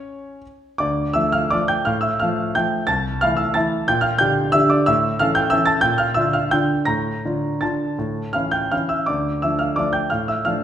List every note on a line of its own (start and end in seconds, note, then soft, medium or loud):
0.00 0.38 C#4 medium
0.00 0.41 C#5 medium
0.78 1.15 D2 medium
0.78 1.14 D5 medium
0.78 1.15 D6 medium
1.13 1.48 F3 soft
1.13 1.48 A3 medium
1.13 1.33 E5 medium
1.13 1.33 E6 medium
1.32 1.51 F5 medium
1.32 1.51 F6 medium
1.50 1.83 F3 soft
1.50 1.83 A3 soft
1.50 1.68 D5 medium
1.50 1.69 D6 medium
1.68 1.85 G5 medium
1.68 1.86 G6 medium
1.85 2.19 A2 medium
1.85 2.02 F5 medium
1.85 2.03 F6 medium
2.01 2.19 E5 medium
2.01 2.19 E6 medium
2.20 2.52 F3 medium
2.20 2.52 A3 soft
2.20 2.53 F5 medium
2.20 2.54 F6 medium
2.55 2.86 F3 medium
2.55 2.86 A3 medium
2.55 2.86 G5 medium
2.55 2.88 G6 medium
2.87 3.20 C2 medium
2.87 3.19 A5 medium
2.87 3.20 A6 medium
3.21 3.53 E3 soft
3.21 3.53 A3 soft
3.21 3.54 E4 medium
3.21 3.38 F5 medium
3.21 3.38 F6 medium
3.37 3.54 E5 medium
3.37 3.55 E6 medium
3.54 3.85 E3 medium
3.54 3.85 A3 soft
3.54 3.86 E4 medium
3.54 3.86 A5 medium
3.54 3.88 A6 medium
3.88 4.20 A#2 medium
3.88 4.03 G5 medium
3.88 4.04 G6 medium
4.01 4.18 F5 medium
4.01 4.19 F6 medium
4.18 4.52 D3 medium
4.18 4.52 D4 medium
4.18 4.52 G4 medium
4.18 4.52 G5 medium
4.18 4.54 G6 medium
4.52 4.85 D3 medium
4.52 4.85 D4 medium
4.52 4.85 G4 medium
4.52 4.70 E5 medium
4.52 4.71 E6 loud
4.70 4.87 D5 medium
4.70 4.87 D6 medium
4.86 5.19 A2 medium
4.86 5.17 E5 medium
4.86 5.19 E6 loud
5.19 5.50 E3 medium
5.19 5.51 C#4 medium
5.19 5.50 A4 medium
5.19 5.36 F5 medium
5.19 5.36 F6 loud
5.35 5.52 G5 medium
5.35 5.52 G6 medium
5.50 5.82 E3 soft
5.50 5.82 C#4 medium
5.50 5.82 A4 medium
5.50 5.67 E5 medium
5.50 5.68 E6 loud
5.66 5.83 A5 medium
5.66 5.83 A6 medium
5.81 6.16 A#2 medium
5.81 5.98 G5 medium
5.81 5.99 G6 loud
5.98 6.16 F5 medium
5.98 6.16 F6 medium
6.14 6.49 D3 soft
6.14 6.49 D4 soft
6.14 6.49 F4 medium
6.14 6.33 E5 medium
6.14 6.33 E6 medium
6.33 6.51 F5 medium
6.33 6.52 F6 medium
6.51 6.85 D3 soft
6.51 6.85 D4 soft
6.51 6.85 F4 soft
6.51 6.85 G5 medium
6.51 6.88 G6 medium
6.85 7.23 A2 medium
6.85 7.57 A#5 medium
6.85 7.61 A#6 medium
7.25 7.59 D3 soft
7.25 7.59 D4 soft
7.25 7.59 F4 soft
7.61 7.96 D3 soft
7.61 7.96 D4 soft
7.61 7.96 F4 soft
7.61 8.31 A5 medium
7.61 8.34 A6 medium
7.99 8.34 A2 medium
8.33 8.68 E3 soft
8.33 8.69 C#4 soft
8.33 8.69 E4 soft
8.33 8.52 F5 medium
8.33 8.53 F6 medium
8.51 8.71 G5 medium
8.51 8.71 G6 medium
8.71 9.05 E3 soft
8.71 9.05 C#4 soft
8.71 9.05 E4 soft
8.71 8.89 F5 medium
8.71 8.90 F6 medium
8.89 9.06 E5 medium
8.89 9.07 E6 medium
9.06 9.43 D2 medium
9.06 9.40 D5 soft
9.06 9.42 D6 medium
9.42 9.75 F3 soft
9.42 9.75 A3 soft
9.42 9.75 D4 soft
9.42 9.59 E5 soft
9.42 9.60 E6 medium
9.59 9.77 F5 medium
9.59 9.77 F6 medium
9.76 10.09 F3 soft
9.76 10.09 A3 soft
9.76 10.10 D4 soft
9.76 9.94 D5 soft
9.76 9.95 D6 medium
9.93 10.10 G5 medium
9.93 10.11 G6 medium
10.10 10.45 A2 medium
10.10 10.27 F5 soft
10.10 10.28 F6 medium
10.28 10.45 E5 soft
10.28 10.45 E6 medium
10.45 10.64 F3 soft
10.45 10.64 A3 soft
10.45 10.64 D4 soft
10.45 10.64 F5 medium
10.45 10.64 F6 medium